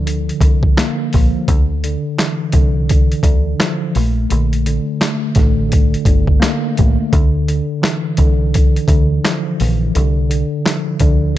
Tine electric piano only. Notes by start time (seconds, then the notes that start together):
Already playing: D3 F3
0.06 D3
0.43 D3
0.77 A#3
1.14 F3
1.48 D3
1.84 D3
2.19 E3
2.53 D3
2.90 D3
3.24 D3
3.61 F3
3.95 A3
4.30 D3
4.67 D3
5.02 A3
5.39 D3
5.69 D3
6.08 D3
6.40 A#3
6.75 A3
7.12 D3
7.49 D3
7.82 E3
8.19 D3
8.56 D3
8.90 D3
9.26 F3
9.61 E3
9.95 D3
10.30 D3
10.66 F3
11.02 D3